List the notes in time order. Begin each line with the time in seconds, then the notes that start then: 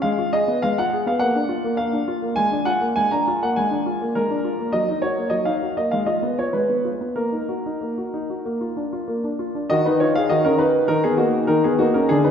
0.02 G#3 F5
0.18 F4
0.33 G#4 D#5
0.48 B3
0.62 G#3 F5
0.78 F4 F#5
0.93 G#4
1.06 B3 F5
1.19 A#3 F#5
1.35 D4
1.49 F4
1.64 A#3
1.77 A#3 F5
1.93 D4
2.08 F4
2.22 A#3
2.36 G#3 G#5
2.52 D4
2.65 F4 F#5
2.81 A#3
2.96 G#3 G#5
3.11 D4 A#5
3.28 F4
3.42 A#3 F#5
3.56 G#3 G#5
3.71 D4
3.86 F4
4.01 A#3
4.15 G#3 A#4
4.31 D4
4.44 F4
4.59 A#3
4.72 F#3 D#5
4.89 D#4
5.02 F#4 C#5
5.17 A#3
5.30 F#3 D#5
5.45 D#4 F5
5.62 F#4
5.77 A#3 D#5
5.91 G#3 F5
6.06 F4 D#5
6.22 B3
6.39 F4 C#5
6.53 G#3 B4
6.69 B3
6.85 F4
7.01 B3
7.16 A#3 A#4
7.32 D#4
7.49 F#4
7.66 D#4
7.81 A#3
7.98 F#4
8.14 D#4
8.30 F#4
8.45 A#3
8.61 F4
8.76 D4
8.93 F4
9.08 A#3
9.24 D4
9.39 F4
9.55 D4
9.70 D#3 F#4 D#5
9.86 D#4 B4
10.00 D#4 F4 C#5
10.15 G#4 F5
10.29 D#3 F#4 D#5
10.45 C#4 A#4
10.58 D#4 B4
10.88 D#3 D#4 A#4
11.04 B3 G#4
11.17 A#3 D#4 F#4
11.47 D#3 D#4 A#4
11.64 B3 G#4
11.79 A#3 D#4 F#4
11.94 C#4 A#4
12.09 D3 D4 G#4
12.24 D#4 B4